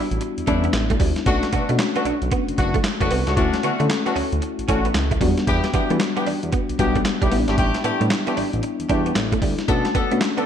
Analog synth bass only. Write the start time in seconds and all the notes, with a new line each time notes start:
0.11 A1
0.38 E2
0.48 E2
0.73 A1
1.00 D2
1.26 B1
1.53 B2
1.69 B2
2.05 B1
2.22 B1
2.48 F#1
2.58 F#1
3.01 F#1
3.10 C2
3.27 C#2
3.37 D2
3.63 D3
3.80 D3
4.16 D2
4.32 D2
4.59 A1
4.69 A1
4.95 C#2
5.21 E2
5.47 E2
5.74 E3
5.90 E3
6.26 E2
6.43 E2
6.69 B1
6.79 B1
7.22 B1
7.31 A1
7.48 G#1
7.58 A1
7.84 A2
8.01 A2
8.37 A1
8.53 A1
8.80 E2
8.90 E2
9.16 A1
9.42 D2
9.68 B1
9.95 B2
10.11 B2